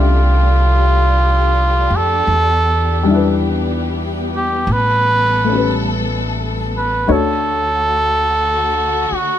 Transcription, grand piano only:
Already playing: G3 D4 F4 G4 A4 E5
3.03 G3 D4
3.10 E4 B4
5.44 A3
5.48 C#4 G4
5.55 B4
7.07 A3 D4 F#4 C#5

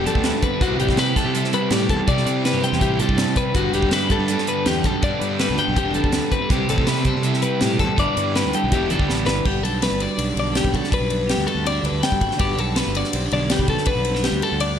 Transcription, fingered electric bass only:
0.05 G2
0.15 D2
0.61 C2
0.80 A1
1.16 C3
1.25 C3
1.71 A2
1.90 E2
2.08 C3
2.26 C3
2.53 G2
2.73 E2
2.81 A1
2.99 C3
3.09 G2
3.55 G1
3.73 E1
4.10 G2
4.19 G2
4.66 E2
4.84 B1
5.03 G2
5.21 G2
5.50 D2
5.68 B1
5.77 E1
5.97 G2
6.04 D2
6.50 C2
6.70 A1
7.05 C3
7.16 C3
7.62 A2
7.79 E2
7.98 G1
8.17 G2
8.45 D2
8.64 B1
8.72 E1
8.91 G2
9.00 D2
9.09 A1
9.26 G1
9.45 G1
9.62 B1
9.90 G1
10.18 B1
10.36 B1
10.64 B1
11.00 B1
11.37 D2
11.55 D2
11.83 D2
11.92 D2
12.12 G2
12.21 G1
12.40 G1
12.58 B1
12.87 G1
13.13 B1
13.32 B1
13.59 B1
13.96 B1
14.32 D2
14.52 D2

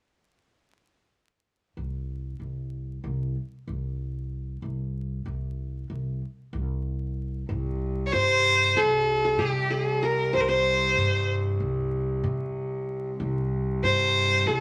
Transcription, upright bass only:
1.77 C2
2.40 C2
3.04 C2
3.67 C2
4.62 C2
5.26 C2
5.90 C2
6.53 C2
7.49 C2
8.13 G2
8.76 C2
9.38 C3
10.34 C2
10.96 G2
11.60 C2
12.24 C3
13.20 C2
13.82 G2
14.46 C2

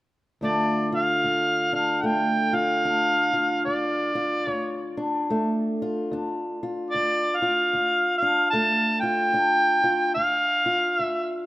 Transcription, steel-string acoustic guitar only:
0.41 D2 D3 A3 D4 F4
0.92 F4
1.24 D2
1.73 D4
2.03 D2 A3
2.53 F4
2.85 D2 D4
3.33 F4
3.66 D2
4.15 F4
4.47 D2
4.97 D4
5.30 D2 A3
5.82 F4
6.11 D2 D4
6.63 F4
6.94 D2
7.42 F4
7.73 D2
8.22 D4
8.53 D2 A3
9.03 F4
9.33 D2 D4
9.84 F4
10.16 D2
10.66 F4
10.99 D2

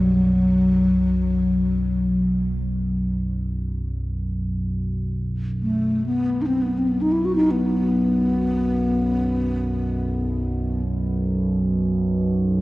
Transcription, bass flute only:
Already playing: F#3
5.62 A3
6.06 B3
6.42 D#4
6.46 C4
6.62 B3
6.77 C4
6.88 B3
7.01 D#4
7.12 E4
7.25 F#4
7.36 D#4
7.51 B3

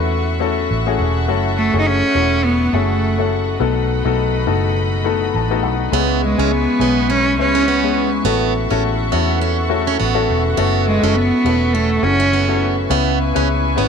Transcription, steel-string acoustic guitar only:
5.93 B3
6.39 C#4
6.81 B3
7.10 C#4
7.55 C#4
7.68 B3
8.25 B3
8.70 C#4
9.12 B3
9.41 C#4
9.87 C#4
10.00 B3
10.57 B3
11.04 C#4
11.46 B3
11.75 C#4
12.20 C#4
12.33 B3
12.91 B3
13.36 C#4
13.78 B3

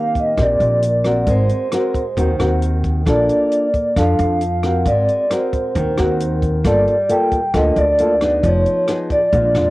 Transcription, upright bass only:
0.37 A#1
0.60 A#1
1.27 G#1
2.17 D#2
2.40 D#2
3.07 A#1
3.96 F2
4.19 F2
4.86 G#1
5.76 D#2
5.98 D#2
6.65 G1
7.54 D2
7.76 D2
8.43 F1
9.33 A#1
9.55 F2

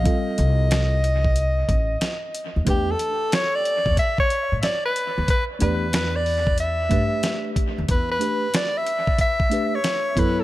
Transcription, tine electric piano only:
0.03 G3 C4 F4 A4
2.65 A3 D4 G4 B4
5.59 A3 D4 G4 D5
6.89 A3 D4 G4 B4
8.19 A3 D4 G4 B4
9.50 A3 D4 G4 B4
10.16 B3 E4 A4 C#5

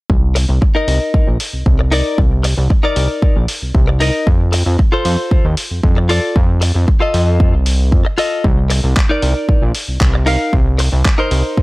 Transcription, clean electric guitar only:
0.35 muted clean electric guitar stroke
0.49 muted clean electric guitar stroke
0.61 muted clean electric guitar stroke
0.75 D#4 A#4 D#5
1.79 muted clean electric guitar stroke
1.91 D#4 A#4 D5
2.43 muted clean electric guitar stroke
2.57 muted clean electric guitar stroke
2.70 muted clean electric guitar stroke
2.83 D#4 A#4 D5
3.87 muted clean electric guitar stroke
4.00 D#4 A#4 D#5
4.52 muted clean electric guitar stroke
4.66 muted clean electric guitar stroke
4.78 muted clean electric guitar stroke
4.92 F4 A4 C5
5.96 muted clean electric guitar stroke
6.09 F4 A4 D5
6.61 muted clean electric guitar stroke
6.74 muted clean electric guitar stroke
6.87 muted clean electric guitar stroke
7.00 F4 A4 D#5
8.05 muted clean electric guitar stroke
8.18 F4 A4 D#5
8.70 muted clean electric guitar stroke
8.83 muted clean electric guitar stroke
8.96 muted clean electric guitar stroke
9.09 D#4 A#4 D5
10.14 muted clean electric guitar stroke
10.26 D#4 A#4 F5
10.78 muted clean electric guitar stroke
10.92 muted clean electric guitar stroke
11.05 muted clean electric guitar stroke
11.18 D#4 A#4 C5

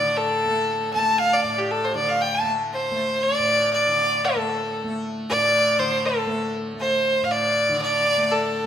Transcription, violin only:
Already playing: D5
0.17 A4
0.94 A5
1.18 F5
1.33 D5
1.58 G4
1.71 A4
1.84 C5
1.95 D5
2.09 F5
2.21 G5
2.35 A5
2.73 C5
3.23 D5
3.73 D5
4.24 A4
5.29 D5
5.79 C5
6.05 A4
6.80 C5
7.24 F5
7.31 D5
7.82 D5
8.32 A4

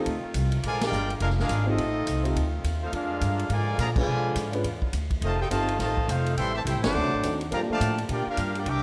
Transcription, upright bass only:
0.06 D2
0.23 muted upright bass stroke
0.34 C2
0.63 A#1
0.92 G1
1.21 F1
1.49 G#1
1.78 A1
2.07 C2
2.35 D2
2.64 D#2
2.93 F2
3.21 G2
3.49 G#2
3.78 A#2
4.06 B2
4.35 G#2
4.64 E2
4.93 D2
5.21 F1
5.51 G1
5.79 A1
6.08 F1
6.37 A1
6.65 C2
6.75 A1
6.84 G1
6.94 D2
7.03 C2
7.13 A1
7.23 D#2
7.52 G2
7.69 muted upright bass stroke
7.80 A2
8.09 A#2
8.27 muted upright bass stroke
8.37 G2
8.66 C2

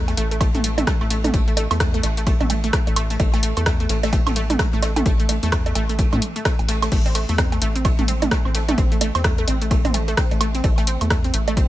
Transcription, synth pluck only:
0.08 A3
0.17 A3
0.31 A3
0.41 A3
0.55 A3
0.64 A3
0.78 A3
0.87 A3
1.01 A3
1.10 A3
1.24 A3
1.34 A3
1.48 A3
1.57 A3
1.71 A3
1.80 A3
1.94 A3
2.04 A3
2.17 A3
2.27 A3
2.41 A3
2.50 A3
2.64 A3
2.73 A3
2.87 A3
2.97 A3
3.10 A3
3.20 A3
3.34 A3
3.43 A3
3.57 A3
3.66 A3
3.80 A3
3.90 A3
4.03 A3
4.13 A3
4.27 A3
4.36 A3
4.50 A3
4.59 A3
4.73 A3
4.83 A3
4.96 A3
5.06 A3
5.20 A3
5.29 A3
5.43 A3
5.52 A3
5.66 A3
5.75 A3
5.89 A3
5.99 A3
6.13 A3
6.36 A3
6.45 A3
6.69 A3
6.83 A3
6.92 A3
7.06 C4
7.15 A3
7.29 A3
7.38 C4
7.52 A3
7.62 A3
7.76 C4
7.85 A3
7.99 A3
8.08 C4
8.22 A3
8.31 A3
8.45 C4
8.55 A3
8.69 A3
8.78 C4
8.92 A3
9.01 A3
9.15 C4
9.24 A3
9.38 A3
9.48 C4
9.62 A3
9.71 A3
9.85 C4
9.94 A3
10.08 A3
10.17 C4
10.31 A3
10.41 A3
10.55 C4
10.64 A3
10.78 A3
10.87 C4
11.01 A3
11.10 A3
11.24 C4
11.34 A3
11.48 A3
11.57 C4

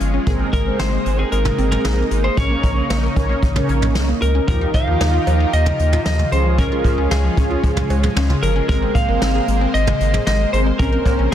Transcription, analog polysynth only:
0.27 C4 G#4 A#4
0.66 C4 G#4 C5
1.58 C4 G#4 A#4
2.37 C#4 A#4 C#5
3.16 C#4 A#4 C#5
3.56 C#4 A#4 C#5
4.48 D#4 F4 G4
4.87 D#4 F4 A#4
6.32 C#4 F4 G#4
6.71 C#4 F4 G#4
7.37 C#4 F4 G#4
8.69 C4 G#4 A#4
9.08 C4 G#4 A#4
10.53 C4 G#4 A#4
10.79 C4 C#4 A#4
10.93 C4 C#4 A#4

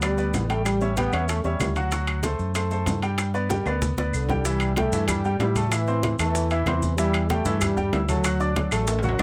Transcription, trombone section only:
0.00 G3
0.48 A3
0.64 G3
0.96 B3
1.27 A3
1.44 G3
4.13 D3
4.45 G3
4.77 A3
5.08 G3
5.40 G3
5.72 E3
6.19 E3
6.66 E3
6.97 G3
7.29 A3
7.61 G3
8.08 F#3
8.56 F#3
8.87 A3
9.03 F#3

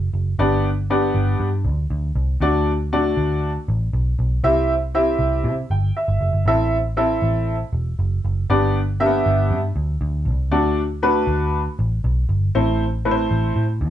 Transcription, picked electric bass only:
0.13 F#1
0.39 G1
1.15 G1
1.40 G2
1.64 D2
1.90 D2
2.15 C2
2.40 D2
3.17 D2
3.68 A1
3.93 B1
4.19 B1
4.44 C2
5.19 C2
5.44 C3
5.70 G1
6.08 G1
6.21 F#1
6.33 G1
6.45 A1
7.22 A1
7.73 E1
7.99 F#1
8.25 F#1
8.50 G1
9.26 G1
9.51 G2
9.76 D2
10.01 D2
10.25 C2
10.51 D2
11.27 D2
11.79 A1
12.04 B1
12.29 G1
12.55 A1
13.31 A1
13.56 A2
13.81 E2

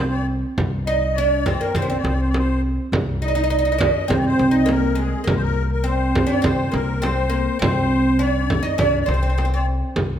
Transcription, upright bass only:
Already playing: C2
0.58 C2
1.74 C2
2.04 C2
2.92 C2
4.10 C2
4.39 C2
5.27 C2
6.44 C2
6.73 C2
7.62 C2
8.79 C2
9.08 C2
9.97 C2

